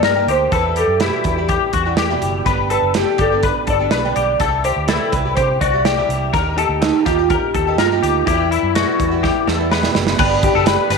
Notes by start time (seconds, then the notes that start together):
Already playing: A#3 D#4 G4 D5
0.03 G2 A#4, snare, closed hi-hat
0.15 D#3 A#3 D#4 G4
0.27 D2 G4 C5, closed hi-hat
0.52 E2 E3 G3 E4 G4 A4 B4, kick, closed hi-hat
0.76 G4 A4, closed hi-hat
0.87 F#2
1.00 E2 B2 E3 G3 E4 G4, snare, closed hi-hat
1.24 E2, kick, closed hi-hat
1.38 E3 G3 E4 G4
1.49 G4, kick, closed hi-hat
1.73 E2 F#4, kick, closed hi-hat
1.85 E3 G3 E4 G4
1.97 G4, snare, closed hi-hat
2.10 E2 B2 E3 G3 E4 G4
2.22 F#1, closed hi-hat
2.46 G1 G3 B3 D4 G4 B4, kick, closed hi-hat
2.70 A4 B4, closed hi-hat
2.82 F#1
2.94 G2 D3 G3 B3 D4 G4, snare, closed hi-hat
3.18 G1 G4 A4, kick, closed hi-hat
3.32 G3 B3 D4 G4
3.43 B4, kick, closed hi-hat
3.67 G1 A4 D5, kick, closed hi-hat
3.79 G3 B3 D4 G4
3.91 B1 B4, snare, closed hi-hat
4.05 G2 D3 G3 B3 D4 G4
4.16 B1 G4, closed hi-hat
4.40 C2 E3 G3 E4 G4 A4, kick, closed hi-hat
4.64 G4 C5, closed hi-hat
4.76 D2
4.88 C3 E3 G3 E4 G4 A4, snare, closed hi-hat
5.12 C2 B4, kick, closed hi-hat
5.25 G3 E4 G4
5.35 C3 G4 C5, kick, closed hi-hat
5.61 C2 F#4 D5, kick, closed hi-hat
5.73 G3 E4 G4
5.85 G4, snare, closed hi-hat
5.97 C3 E3 G3 E4 G4
6.09 C2, closed hi-hat
6.33 D#2 D#3 A#3 D#4 G4 A#4, kick, closed hi-hat
6.58 G4 A4, closed hi-hat
6.69 D2
6.81 D#3 A#3 D#4 G4, snare, closed hi-hat
7.05 D#2 F4 G4, kick, snare, closed hi-hat
7.19 A#3 D#4 G4
7.30 G4 A#4, kick, closed hi-hat
7.54 D#2 A4, kick, closed hi-hat
7.67 A#3 D#4 G4
7.78 G2 F4 A#4, snare, closed hi-hat
7.92 D#3 A#3 D#4 G4
8.03 D2 G4, closed hi-hat
8.26 E2 E3 G3 B3 E4 G4, kick, closed hi-hat
8.51 E4, closed hi-hat
8.63 F#2
8.75 E2 B2 E3 G3 B3 E4 F#4, snare, closed hi-hat
8.99 E2, kick, closed hi-hat
9.11 E3 G3 B3 E4
9.23 G4, kick, snare
9.47 E2 A4, snare
9.58 E3 G3 B3 E4
9.72 B4, snare
9.82 E2 B2 E3 G3 B3 E4, snare
9.95 F#1, snare
10.07 snare
10.18 G1 G2 D3 G3 B3 D4 G4 B4, kick, crash
10.43 G4, kick, closed hi-hat
10.55 F#1 G3 B3 D4 G4 A4
10.66 B4, snare, closed hi-hat
10.90 G1 G3 B3 D4 G4 B4, snare, closed hi-hat